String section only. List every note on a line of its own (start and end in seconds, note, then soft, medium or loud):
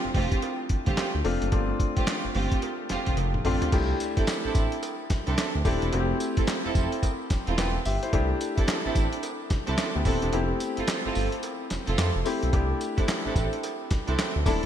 0.14 0.35 A3 medium
0.14 0.35 C4 medium
0.14 0.35 F4 medium
0.14 0.35 G4 medium
0.86 1.02 A3 medium
0.86 1.02 C4 medium
0.86 1.02 F4 medium
0.86 1.03 G4 medium
1.96 2.12 A3 medium
1.96 2.12 C4 medium
1.96 2.13 F4 medium
1.96 2.13 G4 medium
2.35 2.55 A3 medium
2.35 2.55 C4 medium
2.35 2.55 F4 medium
2.35 2.55 G4 medium
2.90 3.10 A3 medium
2.90 3.10 C4 medium
2.90 3.10 F4 medium
2.90 3.10 G4 medium
3.45 3.65 A3 medium
3.45 3.65 C4 medium
3.45 3.65 F4 medium
3.45 3.66 G4 medium
4.17 4.33 C4 medium
4.17 4.33 D4 medium
4.17 4.33 E4 medium
4.17 4.33 A4 medium
4.44 4.60 C4 medium
4.44 4.60 D4 medium
4.44 4.60 E4 medium
4.44 4.60 A4 medium
5.27 5.43 C4 medium
5.27 5.43 D4 medium
5.27 5.43 E4 medium
5.27 5.43 A4 medium
5.65 5.85 C4 medium
5.65 5.85 D4 medium
5.65 5.85 E4 medium
5.65 5.86 A4 medium
6.37 6.53 C4 medium
6.37 6.53 E4 medium
6.37 6.53 F4 medium
6.37 6.53 A4 medium
6.65 6.80 C4 medium
6.65 6.80 E4 medium
6.65 6.81 F4 medium
6.65 6.81 A4 medium
7.47 7.63 C4 medium
7.47 7.63 E4 medium
7.47 7.63 F4 medium
7.47 7.63 A4 medium
8.57 8.73 C4 medium
8.57 8.73 D4 medium
8.57 8.73 E4 medium
8.57 8.73 A4 medium
8.85 9.01 C4 medium
8.85 9.01 D4 medium
8.85 9.01 E4 medium
8.85 9.01 A4 medium
9.67 9.83 C4 medium
9.67 9.83 D4 medium
9.67 9.83 E4 medium
9.67 9.83 A4 medium
10.05 10.26 C4 medium
10.05 10.26 D4 medium
10.05 10.26 E4 medium
10.05 10.26 A4 medium
10.77 10.93 C4 medium
10.77 10.93 E4 medium
10.77 10.93 F4 medium
10.77 10.93 A4 medium
11.05 11.21 C4 medium
11.05 11.21 E4 medium
11.05 11.21 F4 medium
11.05 11.21 A4 medium
11.87 12.03 C4 medium
11.87 12.03 E4 medium
11.87 12.03 F4 medium
11.87 12.03 A4 medium
12.97 13.13 C4 medium
12.97 13.13 D4 medium
12.97 13.13 E4 medium
12.97 13.14 A4 medium
13.25 13.41 C4 medium
13.25 13.41 D4 medium
13.25 13.41 E4 medium
13.25 13.41 A4 medium
14.08 14.23 C4 medium
14.08 14.24 D4 medium
14.08 14.24 E4 medium
14.08 14.24 A4 medium
14.46 14.66 C4 medium
14.46 14.66 D4 medium
14.46 14.66 E4 medium
14.46 14.66 A4 medium